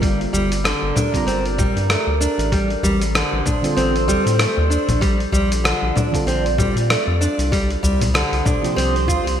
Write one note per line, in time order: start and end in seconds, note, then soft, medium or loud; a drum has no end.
0.00 0.26 G1 medium
0.00 1.09 D3 loud
0.00 1.09 G3 medium
0.00 0.19 G3 loud
0.00 1.10 C4 medium
0.00 1.10 F4 medium
0.00 2.50 G4 medium
0.00 1.11 A#4 loud
0.00 2.50 A#4 medium
0.00 2.50 D5 medium
0.00 2.50 A#5 medium
0.00 kick loud
0.00 open hi-hat medium
0.00 shaker soft
0.21 open hi-hat soft
0.33 0.74 G1 loud
0.33 0.50 G3 loud
0.33 udu medium
0.33 shaker medium
0.52 open hi-hat soft
0.52 shaker soft
0.64 0.94 D3 medium
0.64 cross-stick medium
0.64 open hi-hat soft
0.64 shaker soft
0.82 0.92 G1 medium
0.95 1.26 D4 medium
0.95 low conga medium
0.95 shaker medium
1.13 2.50 D3 medium
1.13 2.51 G3 medium
1.13 2.51 C4 medium
1.13 2.52 F4 medium
1.13 2.52 A#5 medium
1.13 kick medium
1.13 open hi-hat soft
1.13 shaker soft
1.27 1.67 G1 medium
1.27 1.44 C4 loud
1.27 open hi-hat medium
1.27 shaker soft
1.46 open hi-hat soft
1.58 1.75 G3 medium
1.58 kick loud
1.58 low conga medium
1.58 shaker medium
1.76 1.96 G2 medium
1.76 open hi-hat soft
1.76 shaker soft
1.90 2.07 A3 medium
1.90 cross-stick medium
1.90 open hi-hat soft
1.90 shaker soft
2.07 2.27 D2 medium
2.21 2.51 D4 medium
2.21 shaker medium
2.38 2.76 A1 medium
2.38 open hi-hat soft
2.38 shaker soft
2.52 2.69 G3 medium
2.52 5.00 A4 medium
2.52 5.00 C5 medium
2.52 5.00 C6 medium
2.52 5.00 D#6 medium
2.52 kick loud
2.52 open hi-hat soft
2.52 shaker soft
2.70 open hi-hat soft
2.83 3.23 A1 loud
2.83 3.00 G3 loud
2.83 udu medium
2.83 shaker medium
3.01 open hi-hat soft
3.01 shaker soft
3.15 3.45 D3 medium
3.15 cross-stick loud
3.15 open hi-hat medium
3.15 shaker soft
3.33 3.42 A1 medium
3.45 3.76 D4 medium
3.45 kick loud
3.45 low conga medium
3.45 shaker medium
3.62 5.00 D3 medium
3.62 5.00 G3 medium
3.62 5.01 C4 medium
3.62 5.01 F4 medium
3.62 5.02 A4 medium
3.62 open hi-hat soft
3.62 shaker soft
3.77 4.17 A1 medium
3.77 3.94 C4 loud
3.77 open hi-hat medium
3.77 shaker soft
3.96 open hi-hat soft
4.08 4.25 G3 loud
4.08 udu medium
4.08 shaker medium
4.26 4.46 A2 medium
4.26 open hi-hat soft
4.26 shaker soft
4.39 4.56 A3 medium
4.39 cross-stick medium
4.39 open hi-hat medium
4.39 shaker soft
4.57 4.78 D#2 medium
4.57 udu medium
4.70 5.00 D4 medium
4.70 shaker medium
4.89 5.27 A#1 medium
4.89 open hi-hat soft
4.89 low conga medium
4.89 shaker soft
5.01 5.19 G3 loud
5.01 7.50 F4 medium
5.01 7.50 D5 medium
5.01 kick loud
5.01 open hi-hat medium
5.01 shaker soft
5.20 open hi-hat soft
5.32 5.73 A#1 loud
5.32 5.50 G3 loud
5.32 udu medium
5.32 shaker medium
5.52 open hi-hat soft
5.52 shaker soft
5.64 5.94 D3 medium
5.64 cross-stick loud
5.64 open hi-hat medium
5.64 shaker soft
5.82 5.92 A#1 medium
5.95 6.26 D4 medium
5.95 low conga medium
5.95 shaker medium
6.11 7.49 D3 medium
6.11 7.50 G3 medium
6.11 7.50 C4 medium
6.11 7.51 F4 medium
6.11 7.51 A4 medium
6.11 kick medium
6.11 open hi-hat soft
6.11 shaker soft
6.27 6.67 A#1 medium
6.27 6.44 C4 loud
6.27 open hi-hat medium
6.27 shaker soft
6.46 open hi-hat soft
6.58 6.75 G3 loud
6.58 kick loud
6.58 low conga medium
6.58 shaker medium
6.76 6.96 A#2 medium
6.76 open hi-hat soft
6.76 shaker soft
6.90 7.07 A3 medium
6.90 cross-stick loud
6.90 open hi-hat medium
6.90 shaker soft
7.07 7.28 F2 medium
7.21 7.51 D4 medium
7.21 shaker medium
7.38 7.77 C2 medium
7.38 open hi-hat soft
7.38 shaker soft
7.52 7.69 G3 loud
7.52 9.40 G4 medium
7.52 9.40 C5 medium
7.52 9.40 C6 medium
7.52 9.40 D#6 medium
7.52 kick loud
7.52 open hi-hat medium
7.52 shaker soft
7.70 open hi-hat soft
7.83 8.24 C2 loud
7.83 8.00 G3 medium
7.83 udu medium
7.83 shaker medium
8.01 open hi-hat soft
8.01 low conga medium
8.01 shaker soft
8.14 8.44 D3 medium
8.14 cross-stick loud
8.14 open hi-hat medium
8.14 shaker soft
8.32 8.42 C2 medium
8.32 open hi-hat soft
8.45 8.76 D4 medium
8.45 kick loud
8.45 low conga medium
8.45 shaker medium
8.62 9.40 C3 medium
8.62 9.40 F3 medium
8.62 9.40 A#3 medium
8.62 9.40 G4 medium
8.62 open hi-hat soft
8.62 shaker soft
8.76 9.17 C2 medium
8.76 8.94 C4 loud
8.76 open hi-hat medium
8.76 shaker soft
8.96 open hi-hat soft
9.08 9.25 F4 medium
9.08 kick medium
9.08 udu medium
9.08 shaker medium
9.26 9.40 C2 medium
9.26 open hi-hat soft
9.26 shaker soft